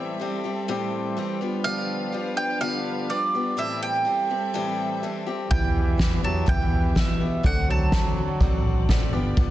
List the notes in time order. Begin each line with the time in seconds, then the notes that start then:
Already playing: A2 E3 G3 C4 G4 A4 E5
0.19 E3 G3 C4 G4
0.44 G3 C4 G4
0.68 A2 E3 G3 C4 G4
1.17 E3 G3 C4 G4
1.41 F3 G3 B3 D4 G4 B4 F5
1.64 G2 D3 F3 G3 B3 G4 F5
2.12 F3 G3 B3 G4
2.37 G5
2.61 G2 D3 F3 G3 B3 G4 F5
3.09 F3 G3 B3 G4 D5
3.34 F3 G3 B3 G4
3.57 A2 E3 G3 C4 G4 A4 E5
3.83 G5
4.05 E3 G3 C4 G4
4.30 G3 C4 G4
4.54 A2 E3 G3 C4 G4
5.03 E3 G3 C4 G4
5.27 G3 C4 G4
5.50 E2 B2 E3 G3 B3 E4 G4 E5 G5, kick, floor tom
5.98 E2 E3 G3 B3 E4 G4 E5, kick, snare
6.23 E2 E3 F#3 G3 B3 G4 A5
6.46 E2 B2 E3 G3 B3 E4 G4 E5 G5, kick, floor tom
6.95 B2 E3 G3 B3 E4 G4 E5, kick, snare
7.20 E3 G3 B3 G4
7.43 D2 D3 F#3 A3 C4 F#4 A4 D5 F#5, kick, floor tom
7.69 F#3 A5
7.92 D3 A3 C4 F#4 A4 D5, kick, snare
8.17 A3 C4 F#4
8.40 A1 D3 A3 C4 F#4 A4 D5, kick, floor tom
8.89 A1 D3 A3 C4 F#4 A4 D5, kick, snare
9.13 G1 G2 F3 G3 B3 F4 G4 D5
9.37 G1 G2 D3 F3 G3 B3 G4, kick, floor tom